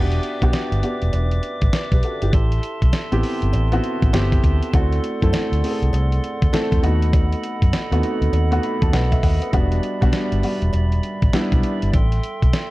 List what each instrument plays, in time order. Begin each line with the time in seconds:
Already playing: fingered electric bass E1, grand piano B3 D4 F#4 G4, pipe organ B4 D5 E5 D6
0.12 closed hi-hat
0.23 closed hi-hat
0.42 fingered electric bass B1, grand piano B3 D4 F#4 G4, kick, closed hi-hat
0.53 snare, closed hi-hat, cowbell
0.72 fingered electric bass G1, closed hi-hat
0.83 grand piano B3 D4 F#4 G4, closed hi-hat
1.02 fingered electric bass E1, closed hi-hat
1.13 fingered electric bass E1, closed hi-hat, cowbell
1.31 closed hi-hat
1.43 closed hi-hat
1.62 fingered electric bass A1, kick, closed hi-hat
1.73 grand piano B4 D5, snare, closed hi-hat, cowbell
1.92 fingered electric bass B1, grand piano G4 B4, kick, closed hi-hat
2.03 grand piano F#4 A4, closed hi-hat
2.22 fingered electric bass G1, grand piano E4 G4, closed hi-hat
2.33 fingered electric bass A1, pipe organ A4 A5 C6, kick, closed hi-hat, cowbell
2.52 closed hi-hat
2.63 closed hi-hat
2.82 fingered electric bass B1, kick, closed hi-hat
2.93 snare, closed hi-hat, cowbell
3.12 fingered electric bass A1, grand piano B3 C4 E4 G4, closed hi-hat
3.23 open hi-hat
3.42 fingered electric bass G1, closed hi-hat
3.53 fingered electric bass A1, closed hi-hat, cowbell
3.72 grand piano B3 C4 E4 F#4, closed hi-hat
3.84 closed hi-hat
4.02 fingered electric bass A1, kick, closed hi-hat
4.13 fingered electric bass G1, grand piano B3 C4 E4 G4, snare, closed hi-hat, cowbell
4.32 kick, closed hi-hat
4.44 fingered electric bass D2, kick, closed hi-hat
4.63 closed hi-hat
4.73 fingered electric bass D2, grand piano A3 C4 E4 F#4, pipe organ D5 F#5, kick, closed hi-hat, cowbell
4.93 closed hi-hat
5.04 closed hi-hat
5.22 fingered electric bass F#2, grand piano A3 C4 E4 A4, kick, closed hi-hat
5.33 snare, closed hi-hat, cowbell
5.52 fingered electric bass D2, closed hi-hat
5.63 grand piano A3 C4 E4 G#4, open hi-hat
5.71 grand piano A4
5.82 fingered electric bass C2, closed hi-hat
5.93 fingered electric bass C2, closed hi-hat, cowbell
6.12 closed hi-hat
6.24 closed hi-hat
6.42 fingered electric bass D2, kick, closed hi-hat
6.53 grand piano A3 C4 E4 A4, muted fingered electric bass stroke, snare, closed hi-hat, cowbell
6.72 fingered electric bass E2, kick, closed hi-hat
6.82 fingered electric bass D#2, grand piano A3 B3 D#4 F#4, pipe organ D#5 B5, closed hi-hat
7.02 closed hi-hat
7.13 kick, closed hi-hat, cowbell
7.33 closed hi-hat
7.44 closed hi-hat
7.62 fingered electric bass F#2, kick, closed hi-hat
7.73 snare, closed hi-hat, cowbell
7.92 fingered electric bass D#2, grand piano A3 B3 C4 F#4, closed hi-hat
7.99 grand piano D#4
8.03 closed hi-hat
8.21 fingered electric bass D2, closed hi-hat
8.33 fingered electric bass D#2, closed hi-hat, cowbell
8.51 grand piano A3 B3 D#4 F#4, closed hi-hat
8.63 grand piano B5, closed hi-hat
8.82 fingered electric bass D#2, grand piano A5, kick, closed hi-hat
8.93 fingered electric bass B1, grand piano B4 D#5 F#5, snare, closed hi-hat, cowbell
9.12 grand piano E5, kick, closed hi-hat
9.23 fingered electric bass D#2, grand piano D#5 F#5, kick, open hi-hat
9.42 grand piano B4 D#5, closed hi-hat
9.52 fingered electric bass E1, grand piano G3 B3 D4 F#4, pipe organ G3 D5 E5, kick, closed hi-hat, cowbell
9.72 closed hi-hat
9.83 closed hi-hat
10.01 fingered electric bass B1, grand piano G3 B3 D4 F#4, kick, closed hi-hat
10.13 snare, closed hi-hat, cowbell
10.32 fingered electric bass G1, closed hi-hat
10.43 grand piano G3 B3 D4 F#4, open hi-hat
10.62 fingered electric bass E1, closed hi-hat
10.73 fingered electric bass E1, closed hi-hat, cowbell
10.92 closed hi-hat
11.03 closed hi-hat
11.22 fingered electric bass A1, kick, closed hi-hat
11.33 grand piano G3 B3 D4 E4, muted fingered electric bass stroke, snare, closed hi-hat, cowbell
11.52 fingered electric bass B1, kick, closed hi-hat
11.63 closed hi-hat
11.82 fingered electric bass G1, closed hi-hat
11.93 fingered electric bass A1, pipe organ A4 G5 C6, kick, closed hi-hat, cowbell
12.12 closed hi-hat
12.23 closed hi-hat
12.42 fingered electric bass B1, kick, closed hi-hat
12.53 snare, closed hi-hat, cowbell